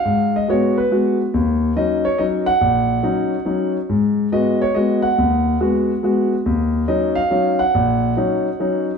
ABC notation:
X:1
M:3/4
L:1/8
Q:"Swing" 1/4=140
K:Ebm
V:1 name="Grand piano"
f e d c2 z | z2 e d e g- | g4- g z | z2 e d e g- |
g4- g z | z2 e f2 g- | g4- g z |]
V:2 name="Grand piano"
A,,2 [A,CG] z [A,CG] z | E,,2 [G,DE] z [G,DE] z | B,,,2 [G,DE] z [G,DE] z | A,,2 [A,CG] z [A,CG] z |
E,,2 [A,CG] z [A,CG] z | E,,2 [G,DE] z [G,DE] z | B,,,2 [G,DE] z [G,DE] z |]